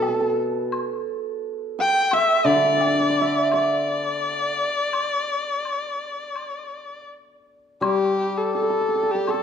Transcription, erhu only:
Already playing: A4
1.81 G5
2.14 E5
2.47 D5
3.55 D5
7.84 G4
8.38 A4
8.56 A4
9.11 G4
9.30 A4

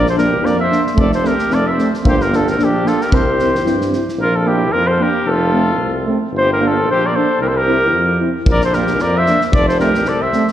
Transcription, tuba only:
Already playing: A#1
0.41 F2
0.96 F1
1.49 F1
2.04 G1
2.58 A#1
3.12 C2
3.65 G2
4.18 A#1
4.73 F2
5.26 F1
5.80 C2
6.33 G1
6.87 A#1
7.40 C2
7.93 F2
8.46 A#1
9.00 F2
9.50 F1
10.04 C2

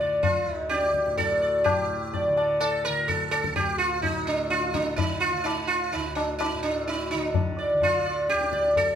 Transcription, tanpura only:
Already playing: D2 A2 D3
0.45 D2
1.07 A2
1.66 A2
2.28 D3
2.88 D3
3.48 D2
4.10 A2
4.71 D3
5.32 D3
5.94 D2
6.54 A2
7.13 D3
7.73 D3
8.32 D2

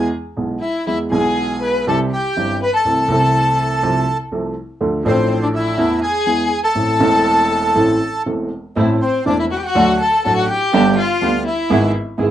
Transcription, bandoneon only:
0.62 E4 E5
0.87 E4 E5
1.12 G#4 G#5
1.62 B4 B5
1.87 A4 A5
2.13 G4 G5
2.63 B4 B5
2.75 A4 A5
5.06 C4 C5
5.42 D4 D5
5.55 E4 E5
6.03 G#4 G#5
6.64 A4 A5
9.02 C4 C5
9.26 D4 D5
9.40 E4 E5
9.52 F#4 F#5
9.59 G5
9.66 F#4 F#5
10.01 A4 A5
10.25 A4 A5
10.38 F#4 F#5
10.50 G4 G5
10.99 F4 F5
11.47 E4 E5

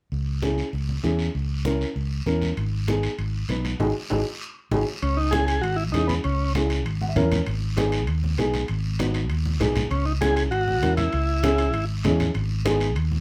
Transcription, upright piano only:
0.42 C#4 E4 G#4
1.03 C#4 E4 G#4
1.65 C#4 E4 A#4
2.26 C#4 E4 A#4
2.87 B3 D#4 G#4
3.49 B3 D#4 B4
3.80 D#4 F#4 G#4
4.11 D#4 F#4 G#4
4.72 D#4 F#4 G#4
5.33 C#4 E4 G#4
5.94 C#4 E4 G#4
6.55 C#4 E4 G#4
7.02 F#5
7.09 E5
7.15 C#4 E4 A#4 C#5
7.76 B3 D#4 G#4
8.38 B3 D#4 G#4
8.99 B3 D#4 F#4
9.60 B3 D#4 G#4
10.21 C#4 E4 G#4
10.82 C#4 E4 A#4
11.43 C#4 E4 G#4
12.04 C#4 E4 G#4
12.65 B3 D#4 G#4

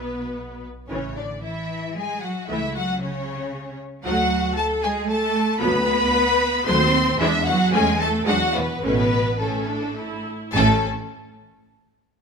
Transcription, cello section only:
Already playing: B2
0.91 C#3
1.17 D3
1.44 E3
1.96 G#3
2.23 F#3
2.48 E3
2.75 F#3
3.01 C#3
4.05 F#3
4.57 A3
4.83 G#3
5.09 A3
5.61 B3
6.67 C4
7.20 E3
7.48 F#3
7.75 G#3
8.02 A3
8.29 F#3
8.57 B2
8.85 B2
9.42 A2
10.56 A3

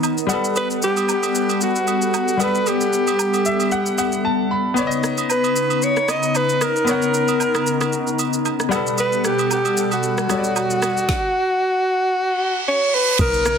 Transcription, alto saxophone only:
0.57 B4
0.84 G4
1.63 F#4
2.42 B4
2.68 G4
5.31 B4
5.84 C#5
6.10 D#5
6.36 B4
6.63 A#4
9.00 B4
9.26 G4
9.52 G4
9.93 F#4
12.68 C#5
12.94 B4
13.21 A#4

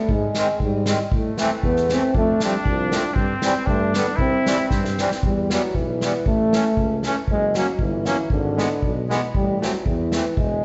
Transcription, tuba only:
0.09 G#2
0.60 G#2
1.12 A2
1.63 E2
2.14 F2
2.65 C2
3.16 G2
3.67 G2
4.19 C2
4.71 G2
5.23 E2
5.74 B1
6.26 A1
6.77 C#2
7.28 F#1
7.78 G1
8.30 G#1
8.82 B1
9.34 A1
9.85 E2
10.37 E1

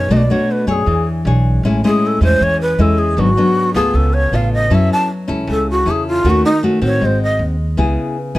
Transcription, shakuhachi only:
Already playing: C#5
0.12 D#5
0.17 D5
0.31 C#5
0.51 B4
0.69 A4
0.73 G#4
1.85 G#4
2.06 A4
2.24 C5
2.43 C#5
2.62 B4
2.81 A4
2.98 G#4
3.20 F#4
3.74 G#4
3.95 A4
4.14 C#5
4.35 F5
4.54 D#5
4.74 E5
4.93 A5
5.51 A4
5.71 F#4
5.91 G#4
6.07 F4
6.30 F#4
6.45 D#4
6.85 C#5
7.05 C5
7.23 D#5

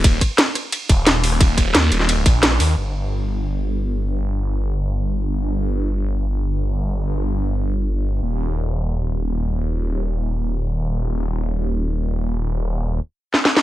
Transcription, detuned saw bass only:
0.04 D#1
0.89 D#1
1.75 D#2
1.92 D#1
2.26 A#1
2.60 D#2
2.77 G1
8.22 D#1

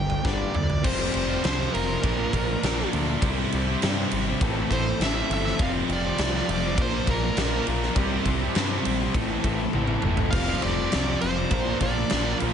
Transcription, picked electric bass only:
Already playing: G1
0.25 G1
0.55 D2
0.85 F1
1.15 F1
1.45 C2
1.74 F1
2.04 A#1
2.34 A#1
2.63 A#1
2.94 D2
3.22 C2
3.53 C2
3.83 G2
4.12 G#1
4.42 A1
4.71 A1
5.00 A1
5.30 G1
5.59 F1
5.89 F1
6.19 C2
6.48 F1
6.78 A#1
7.08 A#1
7.37 A#1
7.68 A#1
7.96 C2
8.26 C2
8.56 G2
8.86 A#1
9.15 A1
9.45 A1
9.74 A1
10.04 G1
10.33 F1
10.64 F1
10.94 C2
11.23 F1
11.51 A#1
11.81 A#1
12.12 A#1
12.42 A#1

